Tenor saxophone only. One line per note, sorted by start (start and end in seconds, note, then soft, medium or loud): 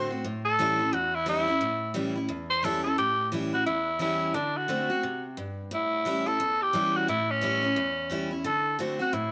0.45 0.95 A4 loud
0.93 1.16 F#4 loud
1.15 1.28 E4 loud
1.29 1.95 E4 loud
2.50 2.66 C5 loud
2.65 2.83 A4 loud
2.84 2.97 A4 loud
2.98 3.30 G4 loud
3.54 3.66 F#4 loud
3.66 3.98 E4 medium
4.02 4.36 E4 loud
4.34 4.58 D4 medium
4.56 5.24 F#4 loud
5.74 6.28 E4 loud
6.27 6.64 A4 loud
6.62 6.98 G4 loud
6.97 7.09 F#4 loud
7.09 7.32 E4 loud
7.31 8.33 C#4 loud
8.46 8.77 A4 loud
9.02 9.15 F#4 medium
9.14 9.32 E4 loud